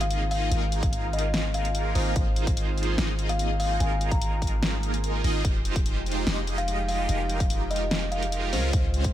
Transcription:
0.00 0.49 G#1 loud
0.00 5.41 G#3 medium
0.00 0.49 A#3 medium
0.00 5.41 C4 medium
0.00 0.49 D#4 medium
0.00 0.49 F4 medium
0.00 5.41 F4 medium
0.00 0.49 G#4 medium
0.00 0.49 D#5 medium
0.00 0.10 F5 medium
0.00 closed hi-hat medium
0.00 impact medium
0.11 closed hi-hat medium
0.31 0.38 F5 medium
0.31 open hi-hat medium
0.42 0.48 F5 medium
0.51 1.93 G#1 loud
0.51 1.93 A#3 medium
0.51 1.93 D#4 medium
0.51 1.93 F4 medium
0.51 1.93 G#4 medium
0.51 1.93 A#4 medium
0.51 closed hi-hat medium
0.72 closed hi-hat medium
0.83 kick loud
0.83 closed hi-hat medium
0.93 closed hi-hat medium
1.13 1.23 D#5 medium
1.13 closed hi-hat soft
1.19 closed hi-hat medium
1.34 snare loud
1.34 closed hi-hat medium
1.54 1.93 F5 medium
1.54 closed hi-hat medium
1.65 closed hi-hat medium
1.75 closed hi-hat medium
1.95 2.14 G#1 loud
1.95 2.13 A#3 medium
1.95 2.13 D#4 medium
1.95 2.13 F4 medium
1.95 2.13 G#4 medium
1.95 2.13 A#4 loud
1.95 2.26 C5 medium
1.95 open hi-hat medium
2.16 2.96 G#1 loud
2.16 2.96 A#3 medium
2.16 2.96 D#4 medium
2.16 2.96 F4 medium
2.16 2.96 G#4 medium
2.16 2.96 C5 loud
2.16 kick loud
2.16 closed hi-hat medium
2.36 closed hi-hat medium
2.47 kick loud
2.47 closed hi-hat medium
2.57 closed hi-hat medium
2.78 closed hi-hat medium
2.83 closed hi-hat medium
2.98 3.78 G#1 loud
2.98 3.78 A#3 medium
2.98 3.78 D#4 medium
2.98 3.78 F4 medium
2.98 3.78 G#4 medium
2.98 3.78 D#5 medium
2.98 snare loud
2.98 closed hi-hat medium
3.19 closed hi-hat medium
3.29 3.38 F5 medium
3.29 closed hi-hat medium
3.39 closed hi-hat medium
3.60 3.66 F5 medium
3.60 open hi-hat medium
3.70 3.77 F5 medium
3.80 5.22 G#1 loud
3.80 5.22 A#3 medium
3.80 5.22 D#4 medium
3.80 5.22 F4 medium
3.80 5.22 G#4 medium
3.80 5.22 A#4 medium
3.80 4.09 G#5 medium
3.80 closed hi-hat medium
4.01 closed hi-hat medium
4.11 4.52 A#5 medium
4.11 kick loud
4.11 closed hi-hat medium
4.22 closed hi-hat medium
4.42 kick medium
4.42 closed hi-hat soft
4.47 closed hi-hat medium
4.63 snare loud
4.63 closed hi-hat medium
4.83 closed hi-hat medium
4.94 closed hi-hat medium
5.04 closed hi-hat medium
5.24 5.43 G#1 loud
5.24 5.42 A#3 loud
5.24 5.42 D#4 medium
5.24 5.42 F4 medium
5.24 5.42 G#4 medium
5.24 5.42 D#5 loud
5.24 open hi-hat medium
5.45 6.25 F1 loud
5.45 8.50 F3 medium
5.45 8.50 G#3 medium
5.45 6.25 G#3 medium
5.45 8.50 D#4 medium
5.45 6.24 D#4 medium
5.45 6.25 F4 medium
5.45 8.50 G4 medium
5.45 6.24 G4 medium
5.45 6.25 C5 loud
5.45 kick loud
5.45 closed hi-hat medium
5.65 closed hi-hat medium
5.76 kick loud
5.76 closed hi-hat medium
5.86 closed hi-hat medium
6.06 closed hi-hat soft
6.12 closed hi-hat medium
6.27 7.07 F1 loud
6.27 7.07 G#3 medium
6.27 7.07 D#4 medium
6.27 7.07 F4 medium
6.27 7.07 G4 medium
6.27 7.07 D#5 medium
6.27 snare loud
6.27 closed hi-hat medium
6.47 closed hi-hat medium
6.58 6.67 F5 medium
6.58 closed hi-hat medium
6.68 closed hi-hat medium
6.88 6.95 F5 medium
6.88 open hi-hat medium
6.99 7.05 F5 medium
7.09 8.54 F1 loud
7.09 8.50 G#3 medium
7.09 8.50 D#4 medium
7.09 8.50 F4 medium
7.09 8.50 G4 medium
7.09 8.50 A#4 medium
7.09 closed hi-hat medium
7.29 closed hi-hat medium
7.40 kick loud
7.40 closed hi-hat medium
7.50 closed hi-hat medium
7.71 7.80 D#5 medium
7.71 closed hi-hat soft
7.76 closed hi-hat medium
7.91 snare loud
7.91 closed hi-hat medium
8.12 8.51 F5 medium
8.12 closed hi-hat medium
8.23 closed hi-hat medium
8.32 closed hi-hat medium
8.53 8.71 C#2 loud
8.53 9.13 C#3 medium
8.53 9.13 G#3 medium
8.53 8.71 G#3 medium
8.53 8.71 C4 medium
8.53 8.71 C#4 medium
8.53 9.13 F4 medium
8.53 8.71 F4 medium
8.53 8.71 A#4 loud
8.53 8.84 C5 medium
8.53 open hi-hat medium
8.73 9.13 C#2 loud
8.73 9.13 G#3 medium
8.73 9.13 C4 medium
8.73 9.13 C#4 medium
8.73 9.13 F4 medium
8.73 9.13 C5 loud
8.73 kick loud
8.73 closed hi-hat medium
8.94 closed hi-hat medium
9.04 kick loud
9.04 closed hi-hat medium

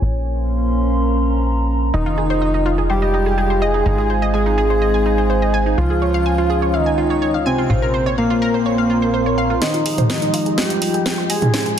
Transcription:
0.00 1.91 A#1 medium
0.00 1.92 A#3 medium
0.00 1.94 C#4 medium
0.00 0.79 F4 medium
0.00 1.92 A#4 medium
0.00 1.92 C5 medium
0.00 1.90 C#5 medium
0.00 1.92 F5 medium
0.00 0.79 G#5 medium
0.18 2.64 C6 medium
0.44 2.71 A#5 medium
1.94 3.83 F1 medium
1.94 7.66 G#3 medium
1.94 2.01 D#4 medium
1.94 5.74 D#4 medium
1.94 2.81 D#4 loud
1.94 3.84 F4 medium
1.94 4.63 F4 medium
1.94 2.80 D#5 loud
2.06 2.10 F4 medium
2.18 2.29 G#4 medium
2.30 2.34 C5 loud
2.30 4.63 D#5 medium
2.42 2.49 D#5 medium
2.54 2.65 D#4 medium
2.66 2.77 F4 loud
2.78 2.85 G#4 medium
2.78 8.47 F5 medium
2.90 3.63 G4 medium
2.90 2.97 C5 medium
2.90 3.63 G5 medium
3.02 3.13 D#5 medium
3.14 3.25 D#4 medium
3.26 3.37 G#4 medium
3.38 3.49 G#4 medium
3.50 3.61 C5 medium
3.62 4.25 G#4 loud
3.62 3.73 D#5 loud
3.62 4.24 G#5 loud
3.74 3.81 D#4 medium
3.86 5.75 G#1 medium
3.86 5.76 C4 medium
3.86 3.93 D#4 medium
3.86 6.55 D#4 medium
3.98 4.02 G#4 medium
4.10 4.21 C5 medium
4.22 4.26 D#5 loud
4.34 5.69 G#4 loud
4.34 4.41 G#5 medium
4.34 5.68 G#5 loud
4.46 4.57 D#4 medium
4.58 4.69 G#4 loud
4.58 5.78 C5 medium
4.70 4.77 C5 medium
4.82 4.89 D#5 medium
4.94 5.05 G#5 medium
5.06 5.17 D#4 medium
5.18 5.29 C5 medium
5.30 5.41 C5 medium
5.42 5.53 D#5 medium
5.54 5.65 G#5 loud
5.66 5.73 D#4 medium
5.78 7.67 C#2 medium
5.78 7.68 C#4 medium
5.78 8.47 F4 medium
5.78 7.68 F4 medium
5.78 5.85 F4 medium
5.78 6.75 F4 loud
5.78 6.75 F5 loud
5.90 5.94 G#4 medium
5.97 7.70 C#5 medium
6.02 6.13 C#5 medium
6.14 6.18 F5 loud
6.26 6.33 G#5 medium
6.38 6.49 F4 medium
6.50 6.61 G#4 loud
6.62 6.69 C#5 medium
6.74 7.37 D#4 medium
6.74 7.36 D#5 medium
6.74 6.81 F5 medium
6.86 6.97 G#5 medium
6.98 7.09 F4 medium
7.10 7.21 C#5 medium
7.22 7.33 C#5 medium
7.34 7.45 F5 medium
7.46 8.09 C4 loud
7.46 8.08 C5 medium
7.46 7.57 G#5 loud
7.58 7.65 F4 medium
7.70 9.59 A#1 medium
7.70 9.60 A#3 medium
7.70 9.62 C4 medium
7.70 7.77 F4 medium
7.70 9.60 A#4 medium
7.70 9.60 C5 medium
7.70 9.60 F5 medium
7.82 7.87 A#4 medium
7.94 8.05 C5 medium
8.05 8.10 C#5 medium
8.05 10.39 A#5 medium
8.14 10.39 C6 medium
8.18 9.52 A#3 loud
8.18 9.53 A#4 loud
8.18 8.25 F5 medium
8.30 8.41 F4 medium
8.42 8.53 A#4 loud
8.54 8.61 C5 medium
8.66 8.73 C#5 medium
8.78 8.89 F5 medium
8.90 9.01 F4 medium
9.02 9.13 C5 medium
9.14 9.25 C5 medium
9.26 9.37 C#5 medium
9.38 9.49 F5 loud
9.50 9.57 F4 medium
9.62 11.52 F3 medium
9.62 11.52 G#3 medium
9.62 10.59 D#4 loud
9.62 9.69 D#4 medium
9.62 11.79 F4 medium
9.62 11.52 F4 medium
9.62 11.52 G4 medium
9.62 10.59 D#5 loud
9.62 11.52 D#5 medium
9.62 snare soft
9.62 closed hi-hat soft
9.74 9.78 F4 medium
9.74 closed hi-hat soft
9.86 9.97 G#4 medium
9.86 open hi-hat medium
9.98 10.02 C5 loud
9.98 closed hi-hat soft
9.98 mid tom medium
10.10 10.17 D#5 medium
10.10 snare medium
10.10 closed hi-hat soft
10.22 10.33 D#4 medium
10.22 closed hi-hat soft
10.34 10.45 F4 loud
10.34 open hi-hat medium
10.38 11.79 D#5 medium
10.46 10.53 G#4 medium
10.46 closed hi-hat soft
10.58 11.20 G4 loud
10.58 10.65 C5 medium
10.58 11.20 G5 loud
10.58 snare medium
10.58 closed hi-hat soft
10.70 10.81 D#5 medium
10.70 closed hi-hat soft
10.82 10.93 D#4 medium
10.82 open hi-hat loud
10.94 11.04 G#4 medium
10.94 closed hi-hat soft
11.06 11.17 G#4 medium
11.06 snare medium
11.06 closed hi-hat soft
11.18 11.29 C5 medium
11.30 11.79 G#4 loud
11.30 11.41 D#5 loud
11.30 11.79 G#5 loud
11.30 open hi-hat medium
11.42 11.49 D#4 medium
11.42 closed hi-hat soft
11.42 mid tom medium
11.54 11.79 D#4 medium
11.54 11.61 D#4 medium
11.54 11.79 D#4 medium
11.54 11.79 G#4 medium
11.54 11.79 C5 medium
11.54 snare medium
11.54 closed hi-hat soft
11.66 11.70 G#4 medium
11.66 closed hi-hat soft

